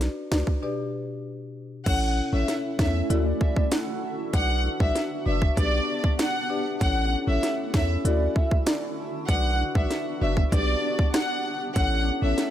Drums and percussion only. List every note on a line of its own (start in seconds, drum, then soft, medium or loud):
0.01 snare medium
0.01 closed hi-hat medium
0.32 snare loud
0.47 kick medium
1.86 kick loud
1.86 closed hi-hat medium
1.86 crash loud
2.48 snare medium
2.48 closed hi-hat medium
2.79 kick loud
2.79 snare loud
3.10 closed hi-hat medium
3.41 kick loud
3.56 kick medium
3.71 snare loud
3.71 closed hi-hat medium
4.33 kick loud
4.33 closed hi-hat medium
4.80 kick loud
4.95 snare medium
4.95 closed hi-hat medium
5.42 kick medium
5.57 kick medium
5.57 closed hi-hat medium
6.04 kick medium
6.19 snare loud
6.19 closed hi-hat medium
6.81 kick loud
6.81 closed hi-hat medium
7.43 snare medium
7.43 closed hi-hat medium
7.74 kick loud
7.74 snare loud
8.05 closed hi-hat medium
8.36 kick medium
8.51 kick medium
8.66 snare loud
8.66 closed hi-hat medium
9.29 kick loud
9.29 closed hi-hat medium
9.75 kick loud
9.91 snare medium
9.91 closed hi-hat medium
10.37 kick medium
10.52 kick medium
10.52 closed hi-hat medium
10.99 kick medium
11.14 cross-stick loud
11.14 snare loud
11.14 closed hi-hat medium
11.76 kick loud
11.76 closed hi-hat medium
12.38 snare medium
12.38 closed hi-hat medium